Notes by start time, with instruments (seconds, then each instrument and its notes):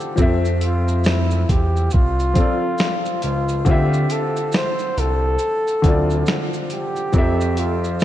Already playing: upright piano D3 C4 F4 E5 F5, flugelhorn G4
0.00 shaker
0.16 analog synth bass F2, upright piano F3 C4, kick, shaker
0.20 upright piano A4 E5
0.45 shaker
0.61 flugelhorn F4, closed hi-hat, shaker
0.88 shaker
1.04 flugelhorn E4, snare, shaker
1.31 shaker
1.49 analog synth bass E2, flugelhorn G4, kick, closed hi-hat, shaker
1.76 shaker
1.91 analog synth bass C2, flugelhorn F4, kick, shaker
2.20 shaker
2.33 upright piano F3 C4, kick, closed hi-hat, shaker
2.38 upright piano A4 D5
2.78 snare, shaker
3.06 shaker
3.22 analog synth bass C#2, flugelhorn F4, closed hi-hat, shaker
3.49 shaker
3.65 analog synth bass D2, upright piano D3 C4 F4, flugelhorn G4, kick, shaker
3.71 upright piano E5
3.94 shaker
4.10 flugelhorn A4, closed hi-hat, shaker
4.37 shaker
4.52 flugelhorn C5, snare, shaker
4.79 shaker
4.97 analog synth bass C2, flugelhorn A4, closed hi-hat, shaker
5.39 shaker
5.67 shaker
5.82 analog synth bass D2, upright piano D3 C4 F4, kick, closed hi-hat, shaker
5.88 upright piano D5
6.10 shaker
6.26 snare, shaker
6.53 shaker
6.70 flugelhorn G4, closed hi-hat, shaker
6.96 shaker
7.12 analog synth bass F2, upright piano F3 C4 A4, kick, shaker
7.18 upright piano E5
7.41 shaker
7.57 flugelhorn F4, closed hi-hat, shaker
7.84 shaker
8.00 shaker